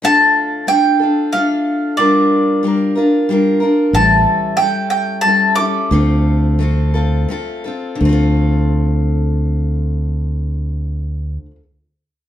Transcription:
X:1
M:3/4
L:1/8
Q:1/4=89
K:Dm
V:1 name="Mandolin"
a2 g2 f2 | d4 z2 | a2 g g a d'- | d'4 z2 |
z6 | z6 |]
V:2 name="Steel-string acoustic guitar"
[D,A,DFA]2 [A,DFA] [DFA] [A,DFA]2 | [G,DFB]2 [G,DFB] [DFB] [G,DFB] [DFB] | [A,,E,G,^CEA]2 [G,CEA]2 [G,CEA] [G,CEA] | [D,A,CFA]2 [A,CFA] [CFA] [A,CFA] [CFA] |
[D,A,CFA]6- | [D,A,CFA]6 |]
V:3 name="Fingered electric bass" clef=bass
z6 | z6 | A,,, z4 z | D,,4 z2 |
D,,6- | D,,6 |]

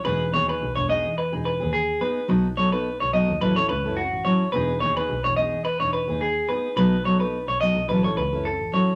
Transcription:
X:1
M:4/4
L:1/16
Q:"Swing 16ths" 1/4=107
K:E
V:1 name="Clean electric guitar"
B2 c B2 c d2 B z B2 G2 B2 | z2 c B2 c d2 B c B2 F2 c2 | B2 c B2 c d2 B c B2 G2 B2 | B2 c B2 c d2 B c B2 A2 c2 |]
V:2 name="Steel-string acoustic guitar"
[B,DG] z [B,DG] [DG] z2 [B,DG] z2 [DG] z G z2 [B,DG] z | [F,B,DA] z [F,B,DA] [B,DA] z2 [F,B,DA] z [F,CEA] [CEA] z [CEA] z2 [F,CEA] z | [B,DG] z [B,DG] [DG] z2 [B,DG] z2 D z [DG] z2 [B,DG] z | [F,B,DA] z [F,B,DA] [B,DA] z2 [F,B,DA] z [F,CEA] [CEA] z [CEA] z2 [F,CEA] z |]
V:3 name="Double bass" clef=bass
E,,, z D,,2 B,,, E,,, z E,,2 E,,, z D,,2 z3 | B,,,4- B,,, B,,,2 D,, A,,,2 C,, F,, z A,,,2 z | E,,, z D,,2 B,,, E,,, z E,,2 E,,, z D,,2 z3 | B,,,4- B,,, B,,,2 B,,, A,,,2 C,, F,, z A,,,2 z |]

